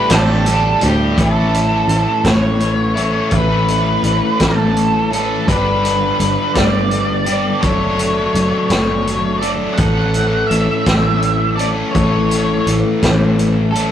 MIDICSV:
0, 0, Header, 1, 6, 480
1, 0, Start_track
1, 0, Tempo, 717703
1, 791, Time_signature, 6, 3, 24, 8
1, 9307, End_track
2, 0, Start_track
2, 0, Title_t, "Lead electric guitar"
2, 0, Program_c, 0, 29
2, 79, Note_on_c, 0, 69, 76
2, 583, Note_off_c, 0, 69, 0
2, 586, Note_on_c, 0, 67, 71
2, 793, Note_off_c, 0, 67, 0
2, 818, Note_on_c, 0, 69, 77
2, 1514, Note_on_c, 0, 73, 81
2, 1544, Note_off_c, 0, 69, 0
2, 2241, Note_off_c, 0, 73, 0
2, 2244, Note_on_c, 0, 71, 82
2, 2958, Note_on_c, 0, 69, 78
2, 2977, Note_off_c, 0, 71, 0
2, 3406, Note_off_c, 0, 69, 0
2, 3445, Note_on_c, 0, 69, 76
2, 3663, Note_on_c, 0, 71, 89
2, 3683, Note_off_c, 0, 69, 0
2, 4358, Note_off_c, 0, 71, 0
2, 4377, Note_on_c, 0, 74, 94
2, 5089, Note_off_c, 0, 74, 0
2, 5092, Note_on_c, 0, 73, 86
2, 5797, Note_off_c, 0, 73, 0
2, 5805, Note_on_c, 0, 73, 87
2, 6269, Note_off_c, 0, 73, 0
2, 6272, Note_on_c, 0, 74, 81
2, 6342, Note_off_c, 0, 74, 0
2, 6512, Note_on_c, 0, 78, 93
2, 7000, Note_on_c, 0, 76, 101
2, 7026, Note_off_c, 0, 78, 0
2, 7727, Note_off_c, 0, 76, 0
2, 7730, Note_on_c, 0, 74, 79
2, 7797, Note_off_c, 0, 74, 0
2, 7966, Note_on_c, 0, 73, 87
2, 8492, Note_off_c, 0, 73, 0
2, 9169, Note_on_c, 0, 69, 75
2, 9237, Note_off_c, 0, 69, 0
2, 9307, End_track
3, 0, Start_track
3, 0, Title_t, "Overdriven electric guitar"
3, 0, Program_c, 1, 29
3, 64, Note_on_c, 1, 67, 72
3, 65, Note_on_c, 1, 62, 68
3, 67, Note_on_c, 1, 55, 70
3, 70, Note_on_c, 1, 50, 62
3, 300, Note_off_c, 1, 50, 0
3, 304, Note_off_c, 1, 55, 0
3, 304, Note_off_c, 1, 62, 0
3, 308, Note_off_c, 1, 67, 0
3, 308, Note_on_c, 1, 50, 65
3, 312, Note_on_c, 1, 55, 78
3, 312, Note_on_c, 1, 62, 69
3, 317, Note_on_c, 1, 67, 73
3, 541, Note_off_c, 1, 67, 0
3, 542, Note_off_c, 1, 62, 0
3, 545, Note_off_c, 1, 55, 0
3, 549, Note_off_c, 1, 50, 0
3, 549, Note_on_c, 1, 67, 80
3, 550, Note_on_c, 1, 62, 74
3, 553, Note_on_c, 1, 55, 63
3, 557, Note_on_c, 1, 50, 68
3, 787, Note_on_c, 1, 45, 77
3, 790, Note_off_c, 1, 62, 0
3, 790, Note_off_c, 1, 67, 0
3, 792, Note_off_c, 1, 55, 0
3, 793, Note_off_c, 1, 50, 0
3, 795, Note_on_c, 1, 57, 81
3, 796, Note_on_c, 1, 52, 76
3, 799, Note_on_c, 1, 61, 89
3, 806, Note_on_c, 1, 64, 89
3, 1967, Note_off_c, 1, 64, 0
3, 1972, Note_off_c, 1, 45, 0
3, 1975, Note_on_c, 1, 64, 75
3, 1976, Note_off_c, 1, 52, 0
3, 1976, Note_off_c, 1, 57, 0
3, 1977, Note_off_c, 1, 61, 0
3, 1985, Note_on_c, 1, 61, 72
3, 1993, Note_on_c, 1, 57, 70
3, 1994, Note_on_c, 1, 52, 68
3, 2002, Note_on_c, 1, 45, 59
3, 2207, Note_off_c, 1, 64, 0
3, 2212, Note_off_c, 1, 45, 0
3, 2212, Note_off_c, 1, 61, 0
3, 2216, Note_off_c, 1, 52, 0
3, 2216, Note_off_c, 1, 57, 0
3, 2220, Note_on_c, 1, 45, 75
3, 2227, Note_on_c, 1, 52, 78
3, 2233, Note_on_c, 1, 57, 94
3, 2240, Note_on_c, 1, 61, 85
3, 2241, Note_on_c, 1, 64, 80
3, 3407, Note_off_c, 1, 64, 0
3, 3409, Note_off_c, 1, 45, 0
3, 3411, Note_off_c, 1, 61, 0
3, 3412, Note_off_c, 1, 52, 0
3, 3415, Note_off_c, 1, 57, 0
3, 3415, Note_on_c, 1, 64, 83
3, 3419, Note_on_c, 1, 61, 76
3, 3424, Note_on_c, 1, 57, 67
3, 3432, Note_on_c, 1, 45, 65
3, 3432, Note_on_c, 1, 52, 72
3, 3647, Note_off_c, 1, 64, 0
3, 3648, Note_off_c, 1, 61, 0
3, 3651, Note_off_c, 1, 57, 0
3, 3655, Note_off_c, 1, 45, 0
3, 3655, Note_off_c, 1, 52, 0
3, 3657, Note_on_c, 1, 43, 78
3, 3665, Note_on_c, 1, 50, 81
3, 3669, Note_on_c, 1, 55, 80
3, 3673, Note_on_c, 1, 59, 82
3, 3678, Note_on_c, 1, 62, 96
3, 3681, Note_on_c, 1, 67, 93
3, 4848, Note_off_c, 1, 43, 0
3, 4849, Note_off_c, 1, 67, 0
3, 4852, Note_off_c, 1, 50, 0
3, 4854, Note_off_c, 1, 55, 0
3, 4855, Note_off_c, 1, 62, 0
3, 4856, Note_off_c, 1, 59, 0
3, 4857, Note_on_c, 1, 67, 90
3, 4863, Note_on_c, 1, 62, 71
3, 4867, Note_on_c, 1, 59, 64
3, 4869, Note_on_c, 1, 55, 78
3, 4875, Note_on_c, 1, 50, 68
3, 4878, Note_on_c, 1, 43, 60
3, 5088, Note_off_c, 1, 67, 0
3, 5091, Note_off_c, 1, 62, 0
3, 5092, Note_off_c, 1, 55, 0
3, 5093, Note_off_c, 1, 59, 0
3, 5095, Note_on_c, 1, 54, 86
3, 5097, Note_off_c, 1, 50, 0
3, 5098, Note_off_c, 1, 43, 0
3, 5104, Note_on_c, 1, 57, 77
3, 5107, Note_on_c, 1, 62, 82
3, 5118, Note_on_c, 1, 69, 88
3, 6288, Note_off_c, 1, 54, 0
3, 6291, Note_off_c, 1, 69, 0
3, 6292, Note_off_c, 1, 62, 0
3, 6294, Note_on_c, 1, 69, 72
3, 6300, Note_on_c, 1, 62, 70
3, 6305, Note_off_c, 1, 57, 0
3, 6308, Note_on_c, 1, 57, 60
3, 6314, Note_on_c, 1, 54, 68
3, 6530, Note_off_c, 1, 62, 0
3, 6537, Note_off_c, 1, 54, 0
3, 6544, Note_on_c, 1, 45, 81
3, 6548, Note_on_c, 1, 52, 81
3, 6551, Note_off_c, 1, 57, 0
3, 6554, Note_on_c, 1, 57, 81
3, 6559, Note_on_c, 1, 61, 93
3, 6562, Note_off_c, 1, 69, 0
3, 6564, Note_on_c, 1, 69, 91
3, 7733, Note_off_c, 1, 45, 0
3, 7734, Note_off_c, 1, 69, 0
3, 7736, Note_off_c, 1, 52, 0
3, 7738, Note_off_c, 1, 57, 0
3, 7741, Note_off_c, 1, 61, 0
3, 7742, Note_on_c, 1, 69, 82
3, 7750, Note_on_c, 1, 61, 78
3, 7755, Note_on_c, 1, 57, 68
3, 7762, Note_on_c, 1, 52, 64
3, 7764, Note_on_c, 1, 45, 65
3, 7972, Note_off_c, 1, 69, 0
3, 7974, Note_off_c, 1, 45, 0
3, 7976, Note_off_c, 1, 61, 0
3, 7978, Note_off_c, 1, 57, 0
3, 7979, Note_off_c, 1, 52, 0
3, 7982, Note_on_c, 1, 45, 81
3, 7987, Note_on_c, 1, 52, 85
3, 7994, Note_on_c, 1, 57, 83
3, 7996, Note_on_c, 1, 61, 98
3, 8000, Note_on_c, 1, 69, 85
3, 9173, Note_off_c, 1, 69, 0
3, 9174, Note_off_c, 1, 45, 0
3, 9177, Note_off_c, 1, 52, 0
3, 9179, Note_off_c, 1, 61, 0
3, 9180, Note_off_c, 1, 57, 0
3, 9181, Note_on_c, 1, 69, 77
3, 9188, Note_on_c, 1, 61, 74
3, 9195, Note_on_c, 1, 57, 66
3, 9201, Note_on_c, 1, 52, 69
3, 9206, Note_on_c, 1, 45, 70
3, 9307, Note_off_c, 1, 45, 0
3, 9307, Note_off_c, 1, 52, 0
3, 9307, Note_off_c, 1, 57, 0
3, 9307, Note_off_c, 1, 61, 0
3, 9307, Note_off_c, 1, 69, 0
3, 9307, End_track
4, 0, Start_track
4, 0, Title_t, "Tanpura"
4, 0, Program_c, 2, 104
4, 0, Note_on_c, 2, 45, 59
4, 0, Note_on_c, 2, 52, 59
4, 0, Note_on_c, 2, 57, 64
4, 116, Note_off_c, 2, 57, 0
4, 116, Note_on_c, 2, 57, 62
4, 519, Note_off_c, 2, 45, 0
4, 522, Note_on_c, 2, 45, 60
4, 4036, Note_off_c, 2, 52, 0
4, 4197, Note_off_c, 2, 57, 0
4, 5304, Note_off_c, 2, 45, 0
4, 9307, End_track
5, 0, Start_track
5, 0, Title_t, "Picked electric bass"
5, 0, Program_c, 3, 34
5, 71, Note_on_c, 3, 33, 110
5, 495, Note_off_c, 3, 33, 0
5, 555, Note_on_c, 3, 38, 83
5, 765, Note_off_c, 3, 38, 0
5, 786, Note_on_c, 3, 33, 88
5, 1212, Note_off_c, 3, 33, 0
5, 1256, Note_on_c, 3, 33, 76
5, 1368, Note_off_c, 3, 33, 0
5, 1501, Note_on_c, 3, 33, 90
5, 2140, Note_off_c, 3, 33, 0
5, 2219, Note_on_c, 3, 33, 92
5, 2647, Note_off_c, 3, 33, 0
5, 2697, Note_on_c, 3, 33, 70
5, 2808, Note_off_c, 3, 33, 0
5, 2948, Note_on_c, 3, 33, 84
5, 3584, Note_off_c, 3, 33, 0
5, 3665, Note_on_c, 3, 31, 92
5, 4090, Note_off_c, 3, 31, 0
5, 4145, Note_on_c, 3, 31, 71
5, 4252, Note_off_c, 3, 31, 0
5, 4385, Note_on_c, 3, 31, 85
5, 5023, Note_off_c, 3, 31, 0
5, 5104, Note_on_c, 3, 30, 85
5, 5530, Note_off_c, 3, 30, 0
5, 5581, Note_on_c, 3, 30, 77
5, 5690, Note_off_c, 3, 30, 0
5, 5818, Note_on_c, 3, 30, 83
5, 6459, Note_off_c, 3, 30, 0
5, 6544, Note_on_c, 3, 33, 80
5, 6971, Note_off_c, 3, 33, 0
5, 7028, Note_on_c, 3, 33, 73
5, 7135, Note_off_c, 3, 33, 0
5, 7266, Note_on_c, 3, 33, 84
5, 7905, Note_off_c, 3, 33, 0
5, 7995, Note_on_c, 3, 33, 85
5, 8418, Note_off_c, 3, 33, 0
5, 8471, Note_on_c, 3, 33, 76
5, 8577, Note_off_c, 3, 33, 0
5, 8712, Note_on_c, 3, 33, 83
5, 9307, Note_off_c, 3, 33, 0
5, 9307, End_track
6, 0, Start_track
6, 0, Title_t, "Drums"
6, 65, Note_on_c, 9, 42, 101
6, 73, Note_on_c, 9, 38, 120
6, 132, Note_off_c, 9, 42, 0
6, 140, Note_off_c, 9, 38, 0
6, 308, Note_on_c, 9, 42, 64
6, 375, Note_off_c, 9, 42, 0
6, 543, Note_on_c, 9, 42, 70
6, 610, Note_off_c, 9, 42, 0
6, 788, Note_on_c, 9, 36, 103
6, 789, Note_on_c, 9, 42, 76
6, 854, Note_off_c, 9, 36, 0
6, 855, Note_off_c, 9, 42, 0
6, 1033, Note_on_c, 9, 42, 65
6, 1100, Note_off_c, 9, 42, 0
6, 1265, Note_on_c, 9, 42, 56
6, 1332, Note_off_c, 9, 42, 0
6, 1502, Note_on_c, 9, 42, 77
6, 1503, Note_on_c, 9, 36, 81
6, 1510, Note_on_c, 9, 38, 112
6, 1569, Note_off_c, 9, 42, 0
6, 1570, Note_off_c, 9, 36, 0
6, 1577, Note_off_c, 9, 38, 0
6, 1741, Note_on_c, 9, 42, 51
6, 1808, Note_off_c, 9, 42, 0
6, 1986, Note_on_c, 9, 42, 53
6, 2053, Note_off_c, 9, 42, 0
6, 2213, Note_on_c, 9, 42, 69
6, 2222, Note_on_c, 9, 36, 92
6, 2280, Note_off_c, 9, 42, 0
6, 2289, Note_off_c, 9, 36, 0
6, 2464, Note_on_c, 9, 42, 58
6, 2531, Note_off_c, 9, 42, 0
6, 2700, Note_on_c, 9, 42, 57
6, 2767, Note_off_c, 9, 42, 0
6, 2941, Note_on_c, 9, 42, 81
6, 2945, Note_on_c, 9, 36, 76
6, 2949, Note_on_c, 9, 38, 106
6, 3008, Note_off_c, 9, 42, 0
6, 3012, Note_off_c, 9, 36, 0
6, 3016, Note_off_c, 9, 38, 0
6, 3187, Note_on_c, 9, 42, 52
6, 3254, Note_off_c, 9, 42, 0
6, 3432, Note_on_c, 9, 42, 56
6, 3498, Note_off_c, 9, 42, 0
6, 3666, Note_on_c, 9, 36, 88
6, 3667, Note_on_c, 9, 42, 75
6, 3733, Note_off_c, 9, 36, 0
6, 3734, Note_off_c, 9, 42, 0
6, 3911, Note_on_c, 9, 42, 61
6, 3978, Note_off_c, 9, 42, 0
6, 4146, Note_on_c, 9, 42, 60
6, 4213, Note_off_c, 9, 42, 0
6, 4383, Note_on_c, 9, 42, 87
6, 4384, Note_on_c, 9, 36, 82
6, 4391, Note_on_c, 9, 38, 110
6, 4450, Note_off_c, 9, 42, 0
6, 4451, Note_off_c, 9, 36, 0
6, 4458, Note_off_c, 9, 38, 0
6, 4623, Note_on_c, 9, 42, 56
6, 4689, Note_off_c, 9, 42, 0
6, 4857, Note_on_c, 9, 42, 62
6, 4924, Note_off_c, 9, 42, 0
6, 5099, Note_on_c, 9, 42, 69
6, 5102, Note_on_c, 9, 36, 102
6, 5166, Note_off_c, 9, 42, 0
6, 5169, Note_off_c, 9, 36, 0
6, 5344, Note_on_c, 9, 42, 66
6, 5411, Note_off_c, 9, 42, 0
6, 5586, Note_on_c, 9, 42, 61
6, 5653, Note_off_c, 9, 42, 0
6, 5819, Note_on_c, 9, 42, 83
6, 5827, Note_on_c, 9, 38, 101
6, 5886, Note_off_c, 9, 42, 0
6, 5894, Note_off_c, 9, 38, 0
6, 6069, Note_on_c, 9, 42, 56
6, 6136, Note_off_c, 9, 42, 0
6, 6303, Note_on_c, 9, 42, 59
6, 6370, Note_off_c, 9, 42, 0
6, 6537, Note_on_c, 9, 42, 69
6, 6544, Note_on_c, 9, 36, 96
6, 6604, Note_off_c, 9, 42, 0
6, 6611, Note_off_c, 9, 36, 0
6, 6782, Note_on_c, 9, 42, 57
6, 6848, Note_off_c, 9, 42, 0
6, 7028, Note_on_c, 9, 42, 59
6, 7095, Note_off_c, 9, 42, 0
6, 7264, Note_on_c, 9, 42, 78
6, 7267, Note_on_c, 9, 36, 76
6, 7272, Note_on_c, 9, 38, 106
6, 7331, Note_off_c, 9, 42, 0
6, 7334, Note_off_c, 9, 36, 0
6, 7339, Note_off_c, 9, 38, 0
6, 7507, Note_on_c, 9, 42, 53
6, 7574, Note_off_c, 9, 42, 0
6, 7752, Note_on_c, 9, 42, 57
6, 7819, Note_off_c, 9, 42, 0
6, 7991, Note_on_c, 9, 42, 70
6, 7992, Note_on_c, 9, 36, 96
6, 8058, Note_off_c, 9, 36, 0
6, 8058, Note_off_c, 9, 42, 0
6, 8234, Note_on_c, 9, 42, 65
6, 8301, Note_off_c, 9, 42, 0
6, 8474, Note_on_c, 9, 42, 59
6, 8541, Note_off_c, 9, 42, 0
6, 8711, Note_on_c, 9, 42, 91
6, 8713, Note_on_c, 9, 36, 78
6, 8719, Note_on_c, 9, 38, 110
6, 8778, Note_off_c, 9, 42, 0
6, 8780, Note_off_c, 9, 36, 0
6, 8786, Note_off_c, 9, 38, 0
6, 8955, Note_on_c, 9, 42, 57
6, 9022, Note_off_c, 9, 42, 0
6, 9199, Note_on_c, 9, 42, 63
6, 9265, Note_off_c, 9, 42, 0
6, 9307, End_track
0, 0, End_of_file